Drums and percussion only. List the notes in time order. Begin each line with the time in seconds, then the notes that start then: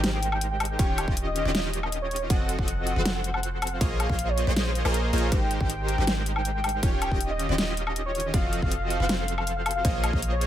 0.04 snare, closed hi-hat
0.23 closed hi-hat
0.32 high woodblock
0.41 closed hi-hat
0.60 closed hi-hat, high woodblock
0.65 closed hi-hat
0.79 kick, closed hi-hat
0.98 closed hi-hat, high woodblock
1.08 kick
1.17 closed hi-hat
1.36 closed hi-hat
1.55 snare, closed hi-hat
1.74 closed hi-hat
1.83 high woodblock
1.92 closed hi-hat
2.11 closed hi-hat
2.16 closed hi-hat
2.30 kick, closed hi-hat
2.49 closed hi-hat
2.59 kick
2.68 closed hi-hat
2.87 closed hi-hat
3.06 snare, closed hi-hat
3.24 closed hi-hat
3.34 high woodblock
3.43 closed hi-hat
3.62 closed hi-hat, high woodblock
3.67 closed hi-hat
3.81 kick, closed hi-hat
4.00 closed hi-hat, high woodblock
4.10 kick
4.19 closed hi-hat
4.38 closed hi-hat
4.56 snare, closed hi-hat
4.75 closed hi-hat
4.85 high woodblock
4.94 closed hi-hat
5.13 closed hi-hat
5.18 closed hi-hat
5.32 kick, closed hi-hat
5.51 closed hi-hat
5.61 kick
5.70 closed hi-hat
5.88 closed hi-hat
6.07 snare, closed hi-hat
6.26 closed hi-hat
6.36 high woodblock
6.45 closed hi-hat
6.64 closed hi-hat, high woodblock
6.69 closed hi-hat
6.83 kick, closed hi-hat
7.02 closed hi-hat, high woodblock
7.12 kick
7.21 closed hi-hat
7.39 closed hi-hat
7.58 snare, closed hi-hat
7.77 closed hi-hat
7.87 high woodblock
7.96 closed hi-hat
8.15 closed hi-hat
8.20 closed hi-hat
8.34 kick, closed hi-hat
8.53 closed hi-hat
8.62 kick
8.72 closed hi-hat
8.90 closed hi-hat
9.09 snare, closed hi-hat
9.28 closed hi-hat
9.38 high woodblock
9.47 closed hi-hat
9.66 closed hi-hat, high woodblock
9.71 closed hi-hat
9.85 kick, closed hi-hat
10.04 closed hi-hat, high woodblock
10.13 kick
10.22 closed hi-hat
10.41 closed hi-hat